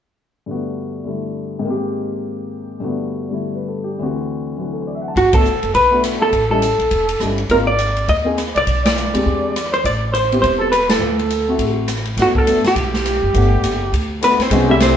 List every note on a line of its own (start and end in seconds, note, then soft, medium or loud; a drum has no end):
0.46 1.64 G2 soft
0.46 1.03 D3 soft
0.46 1.05 A3 soft
0.46 1.66 B3 soft
0.51 1.66 F#4 soft
1.04 1.64 D3 soft
1.04 1.64 G3 soft
1.04 1.65 A3 soft
1.04 1.65 E4 soft
1.59 2.79 G#2 soft
1.59 2.80 D#3 soft
1.65 2.82 A#3 soft
1.65 2.83 C4 soft
1.70 2.84 G4 soft
2.80 3.98 G2 soft
2.80 3.28 D3 soft
2.80 3.30 A3 soft
2.80 4.00 B3 soft
2.84 4.00 F#4 soft
3.29 3.98 D3 soft
3.29 3.99 G3 soft
3.29 3.99 A3 soft
3.29 4.00 E4 soft
3.55 3.75 B4 soft
3.68 3.91 A4 soft
3.84 4.04 G4 soft
3.98 5.15 D2 soft
3.98 5.16 D3 soft
3.98 4.55 E3 soft
3.98 5.17 C4 soft
4.03 4.58 F#4 soft
4.56 5.15 E3 soft
4.56 5.16 F#3 soft
4.56 5.16 D4 soft
4.56 5.17 F#4 soft
4.73 4.82 A4 soft
4.81 4.90 C5 soft
4.87 4.99 D5 soft
4.95 5.06 E5 soft
5.02 5.11 F#5 soft
5.08 5.18 A5 soft
5.16 5.59 G1 medium
5.16 5.33 F#4 medium
5.16 kick soft
5.16 ride soft
5.32 5.43 A3 medium
5.32 5.43 B3 soft
5.32 5.44 D4 soft
5.32 5.44 F#4 medium
5.32 5.74 A4 medium
5.32 5.72 A4 medium
5.32 kick medium
5.32 ride medium
5.45 hi-hat pedal soft
5.63 5.74 F#1 medium
5.63 ride soft
5.74 6.30 B1 medium
5.74 6.01 B4 medium
5.74 6.02 B4 medium
5.74 kick soft
5.74 ride soft
5.91 6.30 A3 medium
5.91 6.30 B3 soft
5.91 6.30 D4 soft
5.91 6.31 F#4 medium
6.04 cross-stick medium
6.04 hi-hat pedal soft
6.04 ride medium
6.20 6.48 A4 medium
6.20 6.50 A4 medium
6.33 6.76 A1 medium
6.33 kick soft
6.33 ride soft
6.48 6.61 G3 medium
6.48 6.61 C#4 medium
6.48 6.61 D#4 medium
6.48 6.62 E4 medium
6.48 7.33 A4 medium
6.48 7.35 A4 medium
6.62 hi-hat pedal soft
6.62 ride soft
6.78 6.90 A#1 medium
6.78 ride soft
6.91 7.18 E1 medium
6.91 kick soft
6.91 ride soft
7.09 ride soft
7.20 7.47 G1 medium
7.20 7.36 G3 soft
7.20 7.37 C#4 soft
7.20 7.37 D#4 soft
7.20 7.37 E4 soft
7.20 cross-stick soft
7.20 hi-hat pedal soft
7.38 ride soft
7.49 8.05 G#1 medium
7.49 7.66 A#3 medium
7.49 7.66 C4 medium
7.49 7.66 D#4 medium
7.49 7.66 F4 medium
7.49 7.58 A#4 medium
7.49 7.56 A#4 medium
7.49 kick soft
7.49 ride soft
7.67 8.05 D5 medium
7.78 hi-hat pedal soft
7.78 ride soft
7.96 ride soft
8.08 8.52 D#2 medium
8.08 8.36 D#5 medium
8.08 kick soft
8.08 ride soft
8.24 8.35 A#3 medium
8.24 8.36 C4 medium
8.24 8.36 D#4 soft
8.24 8.37 G#4 medium
8.38 cross-stick soft
8.38 hi-hat pedal soft
8.38 ride soft
8.55 8.66 C2 medium
8.55 8.82 D5 medium
8.55 8.85 D5 medium
8.55 ride soft
8.67 9.10 B1 medium
8.67 kick soft
8.67 ride soft
8.85 9.69 D5 medium
8.85 9.73 D5 medium
8.85 snare medium
8.85 ride medium
8.97 hi-hat pedal soft
9.14 9.25 D2 medium
9.14 9.52 G#3 soft
9.14 9.52 C4 soft
9.14 9.53 D4 soft
9.14 9.53 G4 medium
9.14 ride medium
9.26 9.81 E2 medium
9.26 kick soft
9.56 cross-stick soft
9.56 hi-hat pedal medium
9.56 ride medium
9.72 9.83 C5 medium
9.72 9.84 C5 medium
9.72 ride soft
9.84 10.39 A1 medium
9.84 10.11 D5 medium
9.84 10.13 D5 medium
9.84 kick soft
9.84 ride soft
10.12 10.40 C5 medium
10.12 10.41 C5 medium
10.12 hi-hat pedal soft
10.12 ride soft
10.31 10.70 B3 medium
10.31 10.70 C4 soft
10.31 10.70 E4 soft
10.31 10.70 G4 medium
10.31 ride soft
10.41 10.98 E1 medium
10.41 10.58 C5 medium
10.41 kick soft
10.41 ride soft
10.59 10.69 A4 medium
10.59 10.73 A4 medium
10.70 10.87 B4 medium
10.70 10.90 B4 medium
10.70 cross-stick medium
10.70 hi-hat pedal soft
10.70 ride soft
10.89 11.73 A4 medium
10.89 snare medium
10.89 ride medium
11.00 11.56 D2 medium
11.19 ride soft
11.30 hi-hat pedal soft
11.30 ride medium
11.48 11.86 A3 soft
11.48 11.87 C4 soft
11.48 11.87 E4 soft
11.48 11.87 F#4 medium
11.59 12.14 A1 medium
11.59 kick soft
11.59 ride soft
11.88 cross-stick medium
11.88 hi-hat pedal medium
11.88 ride soft
12.05 ride soft
12.17 12.61 G1 medium
12.17 12.45 A3 soft
12.17 12.45 B3 soft
12.17 12.45 D4 soft
12.17 12.47 F#4 soft
12.17 12.36 F#4 medium
12.17 kick soft
12.17 snare soft
12.17 ride soft
12.22 12.27 F#4 medium
12.35 12.65 A4 medium
12.35 12.66 A4 medium
12.35 kick soft
12.46 12.62 A3 medium
12.46 12.63 B3 medium
12.46 12.63 D4 medium
12.46 12.63 A4 medium
12.46 hi-hat pedal soft
12.46 ride medium
12.64 14.18 G4 medium
12.64 14.19 G4 medium
12.64 muted upright bass stroke soft
12.64 snare soft
12.64 ride soft
12.76 13.19 B1 medium
12.76 kick soft
12.76 ride soft
12.94 snare soft
13.06 cross-stick medium
13.06 hi-hat pedal soft
13.06 ride soft
13.22 13.33 F#1 medium
13.34 13.61 G1 medium
13.34 13.77 A3 medium
13.34 13.78 B3 soft
13.34 13.78 D4 soft
13.34 13.78 F#5 medium
13.34 kick soft
13.34 ride soft
13.62 13.90 F#1 medium
13.62 hi-hat pedal soft
13.62 ride medium
13.93 14.36 D2 medium
13.93 kick soft
13.93 ride soft
14.21 14.37 A3 medium
14.21 14.38 B3 soft
14.21 14.42 B3 medium
14.21 14.37 D4 soft
14.21 14.38 F#4 medium
14.21 14.42 B4 medium
14.21 cross-stick soft
14.21 hi-hat pedal medium
14.21 ride medium
14.39 14.69 C4 medium
14.39 14.70 C5 medium
14.39 muted upright bass stroke soft
14.39 snare soft
14.39 ride soft
14.51 14.97 C2 medium
14.51 14.67 G#3 medium
14.51 14.67 B3 medium
14.51 14.67 C#4 medium
14.51 14.67 D#4 medium
14.51 14.67 F#4 medium
14.51 kick soft
14.51 ride medium
14.68 14.94 A3 medium
14.68 14.94 C4 medium
14.68 14.94 D4 medium
14.68 14.94 E4 medium
14.68 14.80 E4 medium
14.68 14.94 G4 medium
14.68 14.82 E5 medium
14.80 14.97 C4 medium
14.80 14.97 C5 medium
14.80 snare medium
14.80 hi-hat pedal soft
14.80 ride medium